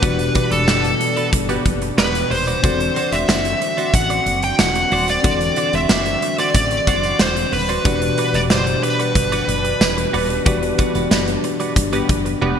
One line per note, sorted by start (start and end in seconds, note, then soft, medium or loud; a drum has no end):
0.00 0.27 E1 loud
0.00 2.60 B2 medium
0.00 2.59 B2 medium
0.00 0.96 E3 medium
0.00 2.60 G3 medium
0.00 2.60 D4 medium
0.00 2.59 D4 medium
0.00 0.19 F#4 medium
0.00 2.59 F#4 medium
0.00 2.60 G4 medium
0.00 0.52 B4 loud
0.00 0.18 B4 medium
0.00 0.17 D5 loud
0.00 2.60 D5 medium
0.00 kick loud
0.00 closed hi-hat medium
0.19 muted clean electric guitar stroke soft
0.19 closed hi-hat medium
0.35 0.48 F#4 medium
0.35 0.48 B4 medium
0.35 0.48 D5 medium
0.35 kick loud
0.35 closed hi-hat medium
0.51 0.68 E1 medium
0.51 0.65 F#4 medium
0.51 0.67 A4 medium
0.51 0.65 B4 medium
0.51 0.64 D5 medium
0.51 closed hi-hat medium
0.68 0.92 F#1 medium
0.68 0.84 F#4 medium
0.68 1.29 A4 medium
0.68 0.84 B4 medium
0.68 0.83 D5 loud
0.68 snare loud
0.68 tambourine medium
0.84 muted clean electric guitar stroke soft
0.84 closed hi-hat soft
1.00 muted clean electric guitar stroke soft
1.00 closed hi-hat medium
1.17 1.30 F#4 medium
1.17 1.30 B4 medium
1.17 1.29 D5 medium
1.17 closed hi-hat medium
1.33 1.57 G1 medium
1.33 muted clean electric guitar stroke soft
1.33 kick medium
1.33 closed hi-hat loud
1.49 1.63 B3 medium
1.49 1.64 F#4 medium
1.49 1.63 G4 medium
1.49 1.63 B4 medium
1.49 1.65 B4 medium
1.49 1.65 D5 medium
1.49 closed hi-hat medium
1.65 1.90 F#1 medium
1.65 muted clean electric guitar stroke soft
1.65 kick medium
1.65 closed hi-hat medium
1.82 muted clean electric guitar stroke soft
1.82 closed hi-hat medium
1.98 2.22 E1 medium
1.98 2.26 B3 loud
1.98 2.14 F#4 medium
1.98 2.26 G4 medium
1.98 2.26 B4 loud
1.98 2.14 B4 loud
1.98 2.29 B4 medium
1.98 2.13 D5 loud
1.98 snare loud
1.98 tambourine medium
2.15 muted clean electric guitar stroke soft
2.15 closed hi-hat medium
2.30 2.55 D#1 medium
2.30 3.15 C5 loud
2.30 muted clean electric guitar stroke soft
2.30 open hi-hat medium
2.47 2.60 F#4 soft
2.47 2.60 B4 medium
2.47 2.60 D5 medium
2.47 closed hi-hat medium
2.62 2.88 E1 loud
2.62 7.81 D3 medium
2.62 3.57 E3 medium
2.62 5.20 C4 medium
2.62 7.81 C4 medium
2.62 5.20 D4 medium
2.62 7.81 F#4 medium
2.62 5.20 F#4 medium
2.62 2.80 F#4 medium
2.62 5.20 A4 medium
2.62 2.80 C5 medium
2.62 5.21 D5 medium
2.62 2.79 D5 medium
2.62 kick loud
2.62 closed hi-hat medium
2.80 muted clean electric guitar stroke soft
2.80 closed hi-hat medium
2.96 3.09 F#4 medium
2.96 3.09 C5 medium
2.96 3.09 D5 medium
2.96 closed hi-hat medium
3.12 3.24 E1 medium
3.12 3.26 F#4 soft
3.12 3.25 C5 medium
3.12 3.25 D5 medium
3.12 3.96 E5 loud
3.12 closed hi-hat medium
3.29 3.53 F#1 loud
3.29 3.45 F#4 medium
3.29 3.45 C5 medium
3.29 3.44 D5 loud
3.29 snare loud
3.29 tambourine medium
3.45 muted clean electric guitar stroke soft
3.45 closed hi-hat medium
3.61 muted clean electric guitar stroke soft
3.61 closed hi-hat medium
3.77 3.91 F#4 medium
3.77 3.91 C5 medium
3.77 3.90 D5 medium
3.77 closed hi-hat soft
3.94 4.18 A1 loud
3.94 4.43 F#5 loud
3.94 muted clean electric guitar stroke soft
3.94 kick loud
3.94 closed hi-hat loud
4.10 4.26 F#4 medium
4.10 4.26 C5 medium
4.10 4.26 D5 medium
4.10 closed hi-hat medium
4.26 4.51 F#1 medium
4.26 muted clean electric guitar stroke soft
4.26 closed hi-hat medium
4.42 4.60 G5 loud
4.42 muted clean electric guitar stroke soft
4.42 closed hi-hat medium
4.59 4.84 E1 medium
4.59 5.08 F#5 loud
4.59 snare loud
4.59 tambourine medium
4.75 muted clean electric guitar stroke soft
4.75 closed hi-hat medium
4.92 5.16 D#1 medium
4.92 5.08 F#4 medium
4.92 5.08 C5 medium
4.92 5.07 D5 medium
4.92 open hi-hat medium
5.08 5.75 D5 loud
5.08 muted clean electric guitar stroke soft
5.08 closed hi-hat medium
5.23 5.49 E1 loud
5.23 6.18 E3 medium
5.23 7.80 C4 medium
5.23 7.81 D4 medium
5.23 7.81 F#4 medium
5.23 5.40 F#4 loud
5.23 7.81 A4 medium
5.23 5.40 C5 loud
5.23 7.81 D5 medium
5.23 5.40 D5 loud
5.23 kick loud
5.23 closed hi-hat medium
5.41 muted clean electric guitar stroke medium
5.41 closed hi-hat medium
5.56 5.70 F#4 medium
5.56 5.70 C5 medium
5.56 5.70 D5 medium
5.56 closed hi-hat medium
5.73 5.86 E1 loud
5.73 5.87 F#4 soft
5.73 5.86 C5 medium
5.73 5.86 D5 medium
5.73 6.35 E5 loud
5.73 closed hi-hat medium
5.89 6.14 F#1 loud
5.89 6.06 F#4 medium
5.89 6.05 C5 medium
5.89 6.05 D5 medium
5.89 snare loud
5.89 tambourine medium
6.06 muted clean electric guitar stroke medium
6.06 closed hi-hat medium
6.22 muted clean electric guitar stroke medium
6.22 closed hi-hat medium
6.38 6.52 F#4 medium
6.38 6.51 C5 medium
6.38 6.51 D5 medium
6.38 6.55 D5 medium
6.38 closed hi-hat medium
6.54 6.79 A1 loud
6.54 7.23 D5 loud
6.54 muted clean electric guitar stroke soft
6.54 kick medium
6.54 closed hi-hat loud
6.71 muted clean electric guitar stroke soft
6.71 closed hi-hat medium
6.87 7.12 F#1 loud
6.87 7.04 F#4 medium
6.87 7.03 C5 medium
6.87 7.03 D5 medium
6.87 kick medium
6.87 closed hi-hat medium
7.03 7.17 F#4 medium
7.03 7.17 C5 medium
7.03 7.17 D5 medium
7.03 closed hi-hat medium
7.19 7.44 E1 loud
7.19 7.36 F#4 medium
7.19 7.36 C5 loud
7.19 7.53 C5 loud
7.19 7.35 D5 loud
7.19 snare loud
7.19 tambourine medium
7.37 muted clean electric guitar stroke soft
7.37 closed hi-hat medium
7.52 7.77 D#1 loud
7.52 8.37 B4 loud
7.52 muted clean electric guitar stroke soft
7.52 open hi-hat medium
7.69 7.82 F#4 medium
7.69 7.82 C5 medium
7.69 7.82 D5 medium
7.69 closed hi-hat medium
7.84 8.10 E1 loud
7.84 10.41 B2 medium
7.84 12.60 B2 medium
7.84 8.79 E3 medium
7.84 12.60 G3 medium
7.84 10.42 D4 medium
7.84 12.60 D4 medium
7.84 10.42 F#4 medium
7.84 8.01 F#4 medium
7.84 10.42 G4 medium
7.84 8.01 B4 medium
7.84 10.42 D5 medium
7.84 8.00 D5 medium
7.84 kick loud
7.84 closed hi-hat medium
8.01 muted clean electric guitar stroke medium
8.01 closed hi-hat medium
8.18 8.31 F#4 medium
8.18 8.31 B4 medium
8.18 8.31 D5 medium
8.18 closed hi-hat medium
8.34 8.50 E1 loud
8.34 8.47 F#4 medium
8.34 8.47 B4 medium
8.34 8.47 D5 medium
8.34 8.40 D5 medium
8.34 closed hi-hat medium
8.50 8.75 F#1 medium
8.50 8.67 F#4 medium
8.50 8.66 B4 medium
8.50 8.83 C5 medium
8.50 8.66 D5 loud
8.50 snare loud
8.50 tambourine medium
8.67 muted clean electric guitar stroke soft
8.67 closed hi-hat medium
8.83 12.38 B4 medium
8.83 muted clean electric guitar stroke soft
8.83 closed hi-hat medium
8.99 9.13 F#4 medium
8.99 9.12 B4 medium
8.99 9.12 D5 medium
8.99 closed hi-hat medium
9.15 9.40 G1 loud
9.15 muted clean electric guitar stroke medium
9.15 kick medium
9.15 closed hi-hat loud
9.32 9.47 F#4 medium
9.32 9.47 B4 medium
9.32 9.48 D5 medium
9.32 closed hi-hat medium
9.48 9.72 F#1 loud
9.48 muted clean electric guitar stroke soft
9.48 closed hi-hat medium
9.64 muted clean electric guitar stroke soft
9.64 closed hi-hat medium
9.80 10.05 E1 medium
9.80 snare loud
9.80 tambourine medium
9.97 muted clean electric guitar stroke soft
9.97 closed hi-hat medium
10.13 10.38 D#1 loud
10.13 10.30 F#4 medium
10.13 10.29 B4 medium
10.13 10.28 D5 medium
10.13 open hi-hat medium
10.29 muted clean electric guitar stroke medium
10.29 closed hi-hat medium
10.45 10.71 E1 medium
10.45 11.40 E3 medium
10.45 12.60 B3 medium
10.45 12.60 D4 medium
10.45 10.62 F#4 medium
10.45 12.60 F#4 medium
10.45 12.60 G4 medium
10.45 10.62 B4 medium
10.45 10.61 D5 medium
10.45 12.60 D5 medium
10.45 kick loud
10.45 closed hi-hat medium
10.62 muted clean electric guitar stroke soft
10.62 closed hi-hat medium
10.78 10.91 F#4 medium
10.78 10.92 B4 medium
10.78 10.92 D5 medium
10.78 kick loud
10.78 closed hi-hat medium
10.95 11.07 E1 loud
10.95 11.08 F#4 soft
10.95 11.08 B4 medium
10.95 11.08 D5 medium
10.95 closed hi-hat medium
11.11 11.35 F#1 medium
11.11 11.27 F#4 medium
11.11 11.27 B4 medium
11.11 11.26 D5 medium
11.11 snare loud
11.11 tambourine medium
11.27 muted clean electric guitar stroke soft
11.27 closed hi-hat medium
11.44 muted clean electric guitar stroke soft
11.44 closed hi-hat medium
11.60 11.73 F#4 medium
11.60 11.73 B4 medium
11.60 11.73 D5 medium
11.60 closed hi-hat medium
11.76 12.01 G1 loud
11.76 muted clean electric guitar stroke soft
11.76 kick medium
11.76 closed hi-hat loud
11.93 12.07 B3 medium
11.93 12.08 F#4 medium
11.93 12.07 G4 medium
11.93 12.07 B4 medium
11.93 12.08 B4 medium
11.93 12.09 D5 medium
11.93 closed hi-hat medium
12.09 12.34 F#1 medium
12.09 muted clean electric guitar stroke medium
12.09 kick medium
12.09 closed hi-hat medium
12.25 muted clean electric guitar stroke soft
12.25 closed hi-hat soft
12.42 12.54 E1 medium
12.42 12.60 B3 medium
12.42 12.58 F#4 medium
12.42 12.60 G4 medium
12.42 12.60 B4 loud
12.42 12.57 B4 medium
12.42 12.57 D5 medium
12.42 high tom medium